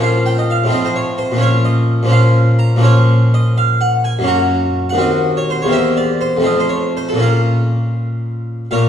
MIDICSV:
0, 0, Header, 1, 2, 480
1, 0, Start_track
1, 0, Key_signature, -5, "minor"
1, 0, Tempo, 465839
1, 46, Time_signature, 6, 3, 24, 8
1, 2447, Tempo, 478851
1, 5807, Tempo, 499584
1, 8844, End_track
2, 0, Start_track
2, 0, Title_t, "Harpsichord"
2, 0, Program_c, 0, 6
2, 0, Note_on_c, 0, 46, 44
2, 0, Note_on_c, 0, 53, 41
2, 0, Note_on_c, 0, 61, 41
2, 18, Note_on_c, 0, 65, 37
2, 31, Note_on_c, 0, 77, 73
2, 240, Note_off_c, 0, 77, 0
2, 265, Note_on_c, 0, 79, 74
2, 394, Note_on_c, 0, 75, 53
2, 395, Note_off_c, 0, 79, 0
2, 518, Note_on_c, 0, 77, 72
2, 520, Note_off_c, 0, 75, 0
2, 658, Note_on_c, 0, 45, 51
2, 664, Note_off_c, 0, 53, 0
2, 676, Note_on_c, 0, 53, 44
2, 688, Note_off_c, 0, 46, 0
2, 708, Note_on_c, 0, 60, 44
2, 716, Note_off_c, 0, 61, 0
2, 723, Note_off_c, 0, 65, 0
2, 726, Note_off_c, 0, 77, 0
2, 735, Note_on_c, 0, 65, 43
2, 754, Note_on_c, 0, 75, 83
2, 876, Note_on_c, 0, 72, 59
2, 880, Note_off_c, 0, 75, 0
2, 988, Note_on_c, 0, 73, 76
2, 1000, Note_off_c, 0, 72, 0
2, 1199, Note_off_c, 0, 73, 0
2, 1216, Note_on_c, 0, 72, 71
2, 1357, Note_on_c, 0, 46, 52
2, 1370, Note_off_c, 0, 53, 0
2, 1382, Note_on_c, 0, 53, 42
2, 1410, Note_off_c, 0, 45, 0
2, 1414, Note_on_c, 0, 61, 43
2, 1427, Note_off_c, 0, 65, 0
2, 1434, Note_off_c, 0, 72, 0
2, 1436, Note_off_c, 0, 60, 0
2, 1440, Note_on_c, 0, 65, 40
2, 1461, Note_on_c, 0, 73, 74
2, 1698, Note_on_c, 0, 75, 79
2, 1717, Note_off_c, 0, 73, 0
2, 2078, Note_off_c, 0, 46, 0
2, 2090, Note_on_c, 0, 46, 58
2, 2099, Note_off_c, 0, 53, 0
2, 2111, Note_on_c, 0, 53, 49
2, 2129, Note_off_c, 0, 61, 0
2, 2141, Note_on_c, 0, 61, 45
2, 2152, Note_off_c, 0, 65, 0
2, 2164, Note_on_c, 0, 65, 50
2, 2186, Note_on_c, 0, 77, 81
2, 2193, Note_off_c, 0, 75, 0
2, 2601, Note_off_c, 0, 77, 0
2, 2662, Note_on_c, 0, 82, 90
2, 2825, Note_off_c, 0, 46, 0
2, 2837, Note_on_c, 0, 46, 57
2, 2844, Note_off_c, 0, 53, 0
2, 2856, Note_on_c, 0, 53, 50
2, 2870, Note_off_c, 0, 61, 0
2, 2881, Note_off_c, 0, 65, 0
2, 2887, Note_on_c, 0, 61, 49
2, 2906, Note_on_c, 0, 65, 49
2, 2914, Note_off_c, 0, 82, 0
2, 2920, Note_on_c, 0, 73, 89
2, 3403, Note_off_c, 0, 73, 0
2, 3416, Note_on_c, 0, 75, 93
2, 3649, Note_off_c, 0, 75, 0
2, 3650, Note_on_c, 0, 77, 95
2, 3849, Note_off_c, 0, 77, 0
2, 3883, Note_on_c, 0, 78, 88
2, 4084, Note_off_c, 0, 78, 0
2, 4120, Note_on_c, 0, 80, 88
2, 4265, Note_on_c, 0, 42, 57
2, 4274, Note_off_c, 0, 46, 0
2, 4284, Note_off_c, 0, 53, 0
2, 4287, Note_on_c, 0, 58, 49
2, 4299, Note_off_c, 0, 61, 0
2, 4308, Note_off_c, 0, 65, 0
2, 4316, Note_on_c, 0, 61, 49
2, 4323, Note_off_c, 0, 80, 0
2, 4341, Note_on_c, 0, 66, 49
2, 4354, Note_on_c, 0, 82, 90
2, 4870, Note_off_c, 0, 82, 0
2, 4973, Note_on_c, 0, 78, 69
2, 5003, Note_on_c, 0, 39, 59
2, 5006, Note_off_c, 0, 58, 0
2, 5015, Note_off_c, 0, 42, 0
2, 5018, Note_on_c, 0, 58, 48
2, 5041, Note_off_c, 0, 61, 0
2, 5049, Note_on_c, 0, 60, 52
2, 5051, Note_off_c, 0, 66, 0
2, 5063, Note_on_c, 0, 66, 50
2, 5086, Note_on_c, 0, 75, 84
2, 5089, Note_off_c, 0, 78, 0
2, 5447, Note_off_c, 0, 75, 0
2, 5451, Note_on_c, 0, 73, 62
2, 5568, Note_off_c, 0, 73, 0
2, 5582, Note_on_c, 0, 72, 68
2, 5694, Note_off_c, 0, 72, 0
2, 5699, Note_on_c, 0, 73, 59
2, 5723, Note_on_c, 0, 40, 56
2, 5729, Note_off_c, 0, 58, 0
2, 5741, Note_on_c, 0, 58, 44
2, 5743, Note_off_c, 0, 39, 0
2, 5758, Note_off_c, 0, 60, 0
2, 5770, Note_on_c, 0, 60, 49
2, 5774, Note_off_c, 0, 66, 0
2, 5792, Note_on_c, 0, 67, 43
2, 5805, Note_on_c, 0, 76, 83
2, 5813, Note_off_c, 0, 73, 0
2, 6038, Note_off_c, 0, 76, 0
2, 6040, Note_on_c, 0, 74, 78
2, 6269, Note_on_c, 0, 72, 77
2, 6272, Note_off_c, 0, 74, 0
2, 6422, Note_on_c, 0, 41, 54
2, 6445, Note_off_c, 0, 40, 0
2, 6453, Note_on_c, 0, 57, 42
2, 6455, Note_off_c, 0, 58, 0
2, 6460, Note_off_c, 0, 60, 0
2, 6471, Note_off_c, 0, 72, 0
2, 6472, Note_on_c, 0, 60, 42
2, 6479, Note_off_c, 0, 67, 0
2, 6496, Note_on_c, 0, 65, 44
2, 6511, Note_on_c, 0, 75, 83
2, 6629, Note_off_c, 0, 75, 0
2, 6643, Note_on_c, 0, 72, 58
2, 6736, Note_on_c, 0, 73, 64
2, 6756, Note_off_c, 0, 72, 0
2, 6947, Note_off_c, 0, 73, 0
2, 6999, Note_on_c, 0, 72, 67
2, 7113, Note_on_c, 0, 69, 48
2, 7117, Note_off_c, 0, 72, 0
2, 7150, Note_on_c, 0, 46, 46
2, 7169, Note_off_c, 0, 41, 0
2, 7175, Note_on_c, 0, 58, 38
2, 7185, Note_off_c, 0, 57, 0
2, 7194, Note_off_c, 0, 60, 0
2, 7202, Note_on_c, 0, 61, 37
2, 7207, Note_off_c, 0, 65, 0
2, 7222, Note_on_c, 0, 65, 37
2, 7235, Note_off_c, 0, 69, 0
2, 7245, Note_on_c, 0, 70, 63
2, 7864, Note_off_c, 0, 70, 0
2, 8610, Note_off_c, 0, 46, 0
2, 8623, Note_off_c, 0, 58, 0
2, 8636, Note_off_c, 0, 61, 0
2, 8646, Note_off_c, 0, 65, 0
2, 8673, Note_on_c, 0, 77, 85
2, 8676, Note_on_c, 0, 46, 62
2, 8691, Note_on_c, 0, 73, 59
2, 8692, Note_on_c, 0, 70, 62
2, 8844, Note_off_c, 0, 46, 0
2, 8844, Note_off_c, 0, 70, 0
2, 8844, Note_off_c, 0, 73, 0
2, 8844, Note_off_c, 0, 77, 0
2, 8844, End_track
0, 0, End_of_file